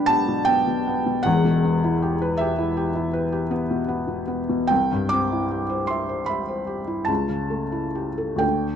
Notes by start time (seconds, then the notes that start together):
Already playing: B1 B3 D4 G4 B4 D5 G5 B5
0.06 B3 A5
0.28 B2
0.45 B3 G5
0.67 B2
0.87 B3
1.06 B2
1.23 E1 E2 F#5
1.45 B2
1.65 B3
1.84 E4
2.02 G4
2.22 B4
2.37 G4 E5
2.58 E4
2.77 G4
2.95 E4
3.13 B4
3.32 G4
3.51 B3
3.71 B2
3.88 B3
4.08 B2
4.28 B3
4.49 B2
4.67 C2 G5
4.92 G2
5.09 C4 D6
5.32 E4
5.51 G4
5.69 C5
5.87 E5 C6
6.09 C5
6.26 E5 B5
6.48 C5
6.67 G4
6.87 E4
7.05 C#2 A5
7.28 C#3
7.50 A3
7.72 E4
7.95 G4
8.18 A4
8.36 D2 A3 D4 A4 G5